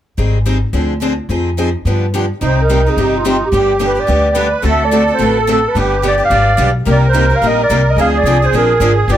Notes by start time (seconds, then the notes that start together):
0.18 G#1 D#3 G3 C4 D#4 G#4
0.45 D#3 G3 C4 D#4 G#4
0.73 D2 D3 F3 C4 D4 G#4
1.02 D3 F3 C4 D4 G#4
1.29 F2 F3 C4 D#4 G#4
1.58 F3 C4 D#4 G#4
1.85 G2 D3 F3 B3 D4 G4
2.14 D3 F3 B3 D4 G4
2.41 C2 C3 G3 C4 D#4 G4
2.45 C5
2.61 A#4
2.69 C3 G3 C4 D#4 G4
2.86 C4 D#4 G4 G#4
2.97 G1 C3 G3 C4 D#4 G4
3.01 G4
3.17 F4
3.25 C3 G3 C4 D#4 F4 G4
3.45 G4
3.52 G1 D3 G3 B3 D4 G4
3.79 D3 G3 B3 D4 G4
3.85 B4
3.95 B3 D4 G4
4.00 D5
4.08 D2 D3 G3 B3 D4 G4
4.34 D3 G3 B3 D4 G4 B4
4.62 D2 D3 A3 C4 F#4 A4
4.69 E5
4.84 D5
4.91 D3 A3 C4 F#4 A4
5.08 C4 F#4 A4
5.14 C5
5.19 A1 D3 A3 C4 F#4 A4
5.26 B4
5.40 A4
5.47 D3 A3 C4 F#4 A4
5.52 A4
5.68 B4
5.75 G1 D3 G3 B3 D4 G4
6.03 D3 G3 B3 D4 G4
6.08 D5
6.18 B3 D4 G4
6.25 F5
6.30 G#1 D3 G3 B3 D4 G4 D5
6.57 B1 D3 G3 B3 D4 G4
6.85 C2 C3 G3 A#3 D#4 G4 A#4
6.92 D5
7.07 C5
7.13 C3 G3 A#3 D#4 G4
7.30 A#3 D#4 G4
7.36 F5
7.41 A#1 C3 G3 A#3 D#4 G4
7.47 D#5
7.63 D5
7.70 C2 C3 G3 A#3 D#4 G4
7.90 D#5
7.96 D2 D3 F3 C4 D4 G#4
8.01 F5
8.17 D5
8.23 C2 D3 F3 C4 D4 G#4
8.42 C4 D4 G#4 C5
8.52 A#1 D3 F3 C4 D4 G#4
8.57 A#4
8.80 G#1 D3 F3 C4 D4 G#4
9.08 G1 D3 F3 B3 D4 G4
9.12 D5